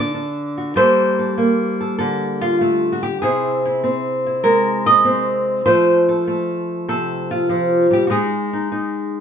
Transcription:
0, 0, Header, 1, 2, 480
1, 0, Start_track
1, 0, Tempo, 611621
1, 596, Time_signature, 4, 2, 24, 8
1, 7223, End_track
2, 0, Start_track
2, 0, Title_t, "Nylon-string guitar"
2, 0, Program_c, 0, 24
2, 0, Note_on_c, 0, 50, 82
2, 0, Note_on_c, 0, 62, 53
2, 0, Note_on_c, 0, 74, 101
2, 104, Note_off_c, 0, 62, 0
2, 114, Note_on_c, 0, 62, 61
2, 452, Note_on_c, 0, 66, 50
2, 578, Note_off_c, 0, 62, 0
2, 581, Note_off_c, 0, 66, 0
2, 594, Note_on_c, 0, 55, 76
2, 598, Note_off_c, 0, 50, 0
2, 600, Note_off_c, 0, 74, 0
2, 601, Note_on_c, 0, 58, 51
2, 603, Note_on_c, 0, 72, 96
2, 605, Note_on_c, 0, 69, 53
2, 924, Note_off_c, 0, 69, 0
2, 934, Note_on_c, 0, 69, 51
2, 1076, Note_off_c, 0, 58, 0
2, 1079, Note_on_c, 0, 58, 58
2, 1408, Note_off_c, 0, 69, 0
2, 1417, Note_on_c, 0, 69, 51
2, 1548, Note_off_c, 0, 69, 0
2, 1558, Note_on_c, 0, 69, 92
2, 1567, Note_on_c, 0, 50, 73
2, 1894, Note_on_c, 0, 65, 85
2, 2040, Note_off_c, 0, 58, 0
2, 2041, Note_off_c, 0, 72, 0
2, 2048, Note_on_c, 0, 57, 69
2, 2291, Note_off_c, 0, 65, 0
2, 2295, Note_on_c, 0, 66, 65
2, 2369, Note_off_c, 0, 69, 0
2, 2370, Note_off_c, 0, 66, 0
2, 2373, Note_off_c, 0, 57, 0
2, 2376, Note_on_c, 0, 67, 82
2, 2502, Note_off_c, 0, 55, 0
2, 2506, Note_off_c, 0, 50, 0
2, 2522, Note_off_c, 0, 67, 0
2, 2525, Note_on_c, 0, 68, 80
2, 2534, Note_on_c, 0, 48, 72
2, 2537, Note_on_c, 0, 60, 53
2, 2543, Note_on_c, 0, 64, 51
2, 2864, Note_off_c, 0, 64, 0
2, 2868, Note_on_c, 0, 64, 50
2, 3007, Note_off_c, 0, 60, 0
2, 3010, Note_on_c, 0, 60, 62
2, 3343, Note_off_c, 0, 64, 0
2, 3346, Note_on_c, 0, 64, 47
2, 3478, Note_off_c, 0, 68, 0
2, 3481, Note_on_c, 0, 70, 98
2, 3485, Note_on_c, 0, 56, 75
2, 3817, Note_on_c, 0, 75, 104
2, 3957, Note_off_c, 0, 60, 0
2, 3960, Note_on_c, 0, 60, 66
2, 4290, Note_off_c, 0, 70, 0
2, 4424, Note_off_c, 0, 56, 0
2, 4429, Note_off_c, 0, 48, 0
2, 4430, Note_off_c, 0, 64, 0
2, 4436, Note_off_c, 0, 75, 0
2, 4439, Note_on_c, 0, 53, 72
2, 4439, Note_on_c, 0, 72, 105
2, 4444, Note_off_c, 0, 60, 0
2, 4447, Note_on_c, 0, 57, 51
2, 4450, Note_on_c, 0, 69, 52
2, 4767, Note_off_c, 0, 69, 0
2, 4776, Note_on_c, 0, 69, 48
2, 4915, Note_off_c, 0, 57, 0
2, 4924, Note_on_c, 0, 57, 60
2, 5397, Note_off_c, 0, 69, 0
2, 5403, Note_on_c, 0, 48, 69
2, 5407, Note_on_c, 0, 69, 92
2, 5735, Note_on_c, 0, 65, 81
2, 5876, Note_off_c, 0, 72, 0
2, 5877, Note_off_c, 0, 57, 0
2, 5880, Note_off_c, 0, 53, 0
2, 5880, Note_on_c, 0, 53, 63
2, 6201, Note_off_c, 0, 53, 0
2, 6204, Note_on_c, 0, 55, 65
2, 6209, Note_off_c, 0, 69, 0
2, 6226, Note_on_c, 0, 67, 82
2, 6330, Note_off_c, 0, 67, 0
2, 6333, Note_on_c, 0, 66, 67
2, 6340, Note_off_c, 0, 48, 0
2, 6351, Note_off_c, 0, 55, 0
2, 6354, Note_on_c, 0, 56, 75
2, 6357, Note_off_c, 0, 65, 0
2, 6360, Note_on_c, 0, 63, 50
2, 6362, Note_off_c, 0, 66, 0
2, 6369, Note_on_c, 0, 68, 81
2, 6686, Note_off_c, 0, 63, 0
2, 6695, Note_on_c, 0, 63, 49
2, 6832, Note_off_c, 0, 63, 0
2, 6842, Note_on_c, 0, 63, 58
2, 7223, Note_off_c, 0, 56, 0
2, 7223, Note_off_c, 0, 63, 0
2, 7223, Note_off_c, 0, 68, 0
2, 7223, End_track
0, 0, End_of_file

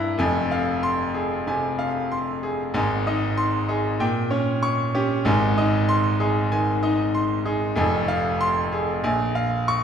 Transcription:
0, 0, Header, 1, 2, 480
1, 0, Start_track
1, 0, Key_signature, -4, "minor"
1, 0, Tempo, 630915
1, 152, Time_signature, 4, 2, 24, 8
1, 7482, End_track
2, 0, Start_track
2, 0, Title_t, "Grand piano"
2, 0, Program_c, 0, 0
2, 0, Control_c, 0, 64, 127
2, 0, Note_on_c, 0, 43, 100
2, 0, Note_on_c, 0, 64, 89
2, 0, Note_on_c, 0, 76, 95
2, 0, Note_on_c, 0, 82, 105
2, 123, Note_off_c, 0, 43, 0
2, 135, Note_on_c, 0, 29, 99
2, 142, Note_on_c, 0, 80, 98
2, 147, Note_on_c, 0, 41, 105
2, 148, Note_off_c, 0, 64, 0
2, 165, Control_c, 0, 64, 0
2, 170, Note_off_c, 0, 76, 0
2, 172, Note_off_c, 0, 82, 0
2, 280, Control_c, 0, 64, 127
2, 390, Note_on_c, 0, 77, 82
2, 536, Note_off_c, 0, 80, 0
2, 632, Note_on_c, 0, 84, 104
2, 781, Note_off_c, 0, 77, 0
2, 871, Note_on_c, 0, 68, 80
2, 1021, Note_off_c, 0, 84, 0
2, 1084, Note_off_c, 0, 29, 0
2, 1090, Note_off_c, 0, 41, 0
2, 1119, Note_on_c, 0, 48, 77
2, 1123, Note_on_c, 0, 80, 90
2, 1261, Note_off_c, 0, 68, 0
2, 1313, Note_off_c, 0, 48, 0
2, 1359, Note_on_c, 0, 77, 85
2, 1508, Note_off_c, 0, 80, 0
2, 1610, Note_on_c, 0, 84, 83
2, 1747, Note_off_c, 0, 77, 0
2, 1850, Note_on_c, 0, 68, 81
2, 1993, Note_off_c, 0, 84, 0
2, 2084, Note_on_c, 0, 32, 103
2, 2085, Note_on_c, 0, 44, 106
2, 2089, Note_off_c, 0, 68, 0
2, 2089, Note_on_c, 0, 80, 98
2, 2099, Control_c, 0, 64, 0
2, 2240, Control_c, 0, 64, 127
2, 2335, Note_on_c, 0, 63, 80
2, 2335, Note_on_c, 0, 75, 86
2, 2471, Note_off_c, 0, 80, 0
2, 2522, Note_off_c, 0, 63, 0
2, 2567, Note_on_c, 0, 84, 105
2, 2712, Note_off_c, 0, 75, 0
2, 2803, Note_on_c, 0, 63, 79
2, 2807, Note_on_c, 0, 68, 90
2, 2946, Note_off_c, 0, 84, 0
2, 2992, Note_off_c, 0, 63, 0
2, 3009, Note_off_c, 0, 32, 0
2, 3010, Note_off_c, 0, 44, 0
2, 3041, Note_off_c, 0, 68, 0
2, 3042, Note_on_c, 0, 46, 95
2, 3045, Note_on_c, 0, 79, 92
2, 3054, Control_c, 0, 64, 0
2, 3157, Control_c, 0, 64, 127
2, 3275, Note_on_c, 0, 61, 82
2, 3278, Note_on_c, 0, 73, 86
2, 3423, Note_off_c, 0, 79, 0
2, 3467, Note_off_c, 0, 61, 0
2, 3520, Note_on_c, 0, 85, 111
2, 3660, Note_off_c, 0, 73, 0
2, 3763, Note_on_c, 0, 61, 89
2, 3765, Note_on_c, 0, 67, 86
2, 3901, Note_off_c, 0, 85, 0
2, 3951, Note_off_c, 0, 61, 0
2, 3967, Note_off_c, 0, 46, 0
2, 3994, Note_on_c, 0, 32, 110
2, 3998, Note_on_c, 0, 80, 99
2, 3999, Note_off_c, 0, 67, 0
2, 4001, Note_on_c, 0, 44, 111
2, 4009, Control_c, 0, 64, 0
2, 4140, Control_c, 0, 64, 127
2, 4242, Note_on_c, 0, 63, 83
2, 4243, Note_on_c, 0, 75, 91
2, 4379, Note_off_c, 0, 80, 0
2, 4429, Note_off_c, 0, 63, 0
2, 4478, Note_on_c, 0, 84, 111
2, 4620, Note_off_c, 0, 75, 0
2, 4717, Note_on_c, 0, 68, 87
2, 4719, Note_on_c, 0, 63, 88
2, 4856, Note_off_c, 0, 84, 0
2, 4905, Note_off_c, 0, 63, 0
2, 4919, Note_off_c, 0, 32, 0
2, 4923, Note_off_c, 0, 44, 0
2, 4958, Note_on_c, 0, 51, 82
2, 4959, Note_on_c, 0, 80, 100
2, 5095, Note_off_c, 0, 68, 0
2, 5144, Note_off_c, 0, 51, 0
2, 5193, Note_on_c, 0, 63, 84
2, 5196, Note_on_c, 0, 75, 86
2, 5338, Note_off_c, 0, 80, 0
2, 5383, Note_off_c, 0, 63, 0
2, 5436, Note_on_c, 0, 84, 93
2, 5576, Note_off_c, 0, 75, 0
2, 5672, Note_on_c, 0, 63, 84
2, 5672, Note_on_c, 0, 68, 89
2, 5815, Note_off_c, 0, 84, 0
2, 5861, Note_off_c, 0, 63, 0
2, 5901, Note_on_c, 0, 29, 109
2, 5906, Note_on_c, 0, 80, 104
2, 5909, Note_off_c, 0, 68, 0
2, 5914, Note_on_c, 0, 41, 111
2, 5918, Control_c, 0, 64, 0
2, 6026, Control_c, 0, 64, 127
2, 6149, Note_on_c, 0, 77, 98
2, 6288, Note_off_c, 0, 80, 0
2, 6395, Note_on_c, 0, 84, 123
2, 6530, Note_off_c, 0, 77, 0
2, 6637, Note_on_c, 0, 68, 86
2, 6775, Note_off_c, 0, 84, 0
2, 6834, Note_off_c, 0, 29, 0
2, 6841, Note_off_c, 0, 41, 0
2, 6872, Note_off_c, 0, 68, 0
2, 6876, Note_on_c, 0, 34, 107
2, 6877, Note_on_c, 0, 80, 101
2, 6880, Control_c, 0, 64, 0
2, 7022, Control_c, 0, 64, 127
2, 7115, Note_on_c, 0, 77, 90
2, 7259, Note_off_c, 0, 80, 0
2, 7365, Note_on_c, 0, 85, 125
2, 7482, Note_off_c, 0, 34, 0
2, 7482, Note_off_c, 0, 77, 0
2, 7482, Note_off_c, 0, 85, 0
2, 7482, End_track
0, 0, End_of_file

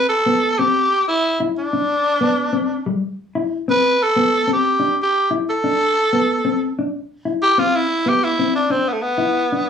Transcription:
0, 0, Header, 1, 3, 480
1, 0, Start_track
1, 0, Key_signature, 0, "major"
1, 0, Tempo, 324675
1, 1606, Time_signature, 12, 3, 24, 8
1, 14335, End_track
2, 0, Start_track
2, 0, Title_t, "Tenor saxophone"
2, 0, Program_c, 0, 66
2, 130, Note_on_c, 0, 69, 92
2, 860, Note_on_c, 0, 67, 90
2, 882, Note_off_c, 0, 69, 0
2, 1586, Note_off_c, 0, 67, 0
2, 1594, Note_on_c, 0, 64, 90
2, 2047, Note_off_c, 0, 64, 0
2, 2336, Note_on_c, 0, 62, 78
2, 4196, Note_off_c, 0, 62, 0
2, 5471, Note_on_c, 0, 71, 97
2, 5952, Note_on_c, 0, 69, 95
2, 5974, Note_off_c, 0, 71, 0
2, 6662, Note_off_c, 0, 69, 0
2, 6694, Note_on_c, 0, 67, 79
2, 7343, Note_off_c, 0, 67, 0
2, 7427, Note_on_c, 0, 67, 87
2, 7847, Note_off_c, 0, 67, 0
2, 8129, Note_on_c, 0, 69, 93
2, 9968, Note_off_c, 0, 69, 0
2, 10974, Note_on_c, 0, 67, 108
2, 11224, Note_on_c, 0, 65, 88
2, 11247, Note_off_c, 0, 67, 0
2, 11468, Note_on_c, 0, 64, 100
2, 11490, Note_off_c, 0, 65, 0
2, 11951, Note_on_c, 0, 67, 86
2, 11973, Note_off_c, 0, 64, 0
2, 12182, Note_on_c, 0, 64, 86
2, 12204, Note_off_c, 0, 67, 0
2, 12638, Note_off_c, 0, 64, 0
2, 12647, Note_on_c, 0, 62, 78
2, 12878, Note_on_c, 0, 60, 83
2, 12900, Note_off_c, 0, 62, 0
2, 13126, Note_on_c, 0, 59, 68
2, 13148, Note_off_c, 0, 60, 0
2, 13198, Note_on_c, 0, 57, 57
2, 13220, Note_off_c, 0, 59, 0
2, 13335, Note_on_c, 0, 59, 81
2, 13358, Note_off_c, 0, 57, 0
2, 14335, Note_off_c, 0, 59, 0
2, 14335, End_track
3, 0, Start_track
3, 0, Title_t, "Clean electric guitar"
3, 0, Program_c, 1, 27
3, 388, Note_on_c, 1, 59, 82
3, 766, Note_off_c, 1, 59, 0
3, 875, Note_on_c, 1, 60, 77
3, 1250, Note_off_c, 1, 60, 0
3, 2074, Note_on_c, 1, 64, 77
3, 2451, Note_off_c, 1, 64, 0
3, 2560, Note_on_c, 1, 62, 78
3, 2935, Note_off_c, 1, 62, 0
3, 3265, Note_on_c, 1, 59, 77
3, 3646, Note_off_c, 1, 59, 0
3, 3737, Note_on_c, 1, 60, 74
3, 4121, Note_off_c, 1, 60, 0
3, 4233, Note_on_c, 1, 55, 73
3, 4426, Note_off_c, 1, 55, 0
3, 4957, Note_on_c, 1, 64, 80
3, 5334, Note_off_c, 1, 64, 0
3, 5442, Note_on_c, 1, 60, 87
3, 5817, Note_off_c, 1, 60, 0
3, 6155, Note_on_c, 1, 59, 78
3, 6533, Note_off_c, 1, 59, 0
3, 6616, Note_on_c, 1, 60, 73
3, 7001, Note_off_c, 1, 60, 0
3, 7090, Note_on_c, 1, 62, 72
3, 7292, Note_off_c, 1, 62, 0
3, 7847, Note_on_c, 1, 64, 76
3, 8219, Note_off_c, 1, 64, 0
3, 8338, Note_on_c, 1, 62, 80
3, 8706, Note_off_c, 1, 62, 0
3, 9060, Note_on_c, 1, 59, 70
3, 9427, Note_off_c, 1, 59, 0
3, 9533, Note_on_c, 1, 60, 79
3, 9902, Note_off_c, 1, 60, 0
3, 10033, Note_on_c, 1, 62, 79
3, 10209, Note_off_c, 1, 62, 0
3, 10724, Note_on_c, 1, 64, 73
3, 11096, Note_off_c, 1, 64, 0
3, 11206, Note_on_c, 1, 60, 76
3, 11577, Note_off_c, 1, 60, 0
3, 11916, Note_on_c, 1, 59, 71
3, 12290, Note_off_c, 1, 59, 0
3, 12408, Note_on_c, 1, 60, 78
3, 12777, Note_off_c, 1, 60, 0
3, 12864, Note_on_c, 1, 62, 70
3, 13057, Note_off_c, 1, 62, 0
3, 13570, Note_on_c, 1, 64, 73
3, 13953, Note_off_c, 1, 64, 0
3, 14080, Note_on_c, 1, 62, 73
3, 14335, Note_off_c, 1, 62, 0
3, 14335, End_track
0, 0, End_of_file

